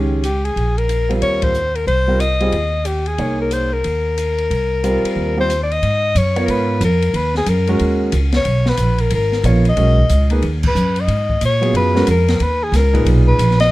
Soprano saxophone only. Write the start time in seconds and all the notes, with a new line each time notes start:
0.24 G4
0.45 G#4
0.78 A#4
1.22 C#5
1.44 C5
1.75 A#4
1.88 C5
2.21 D#5
2.86 G4
3.08 G#4
3.41 A#4
3.53 C5
3.73 A#4
5.41 C5
5.63 D5
5.72 D#5
6.18 C#5
6.46 A#4
6.51 B4
6.84 A#4
7.16 B4
7.38 G#4
7.49 A#4
8.36 C#5
8.69 B4
9.01 A#4
9.15 A#4
9.69 D#5
10.67 B4
11.00 D#5
11.45 C#5
11.77 B4
12.11 A#4
12.43 B4
12.64 G#4
12.76 A#4
13.28 B4
13.61 D#5